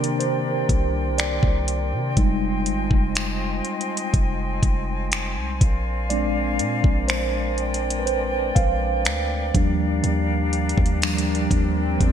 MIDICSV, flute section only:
0, 0, Header, 1, 2, 480
1, 0, Start_track
1, 0, Tempo, 983607
1, 1058, Time_signature, 4, 2, 24, 8
1, 5915, End_track
2, 0, Start_track
2, 0, Title_t, "Flute section"
2, 0, Program_c, 0, 73
2, 0, Note_on_c, 0, 60, 74
2, 0, Note_on_c, 0, 62, 65
2, 0, Note_on_c, 0, 70, 68
2, 0, Note_on_c, 0, 74, 61
2, 0, Note_on_c, 0, 79, 78
2, 1038, Note_off_c, 0, 74, 0
2, 1039, Note_off_c, 0, 62, 0
2, 1039, Note_off_c, 0, 70, 0
2, 1057, Note_on_c, 0, 65, 62
2, 1057, Note_on_c, 0, 75, 66
2, 1058, Note_on_c, 0, 80, 66
2, 2582, Note_off_c, 0, 75, 0
2, 2598, Note_off_c, 0, 65, 0
2, 2613, Note_off_c, 0, 79, 0
2, 2737, Note_on_c, 0, 70, 70
2, 2737, Note_on_c, 0, 74, 67
2, 2737, Note_on_c, 0, 77, 86
2, 3688, Note_off_c, 0, 77, 0
2, 3697, Note_on_c, 0, 79, 79
2, 4523, Note_off_c, 0, 60, 0
2, 4532, Note_off_c, 0, 80, 0
2, 4638, Note_off_c, 0, 70, 0
2, 4648, Note_off_c, 0, 79, 0
2, 4657, Note_on_c, 0, 62, 77
2, 4657, Note_on_c, 0, 67, 66
2, 4657, Note_on_c, 0, 70, 67
2, 4657, Note_on_c, 0, 77, 79
2, 5608, Note_off_c, 0, 77, 0
2, 5617, Note_on_c, 0, 79, 76
2, 5915, Note_off_c, 0, 62, 0
2, 5915, Note_off_c, 0, 67, 0
2, 5915, Note_off_c, 0, 70, 0
2, 5915, Note_off_c, 0, 74, 0
2, 5915, Note_off_c, 0, 79, 0
2, 5915, End_track
0, 0, End_of_file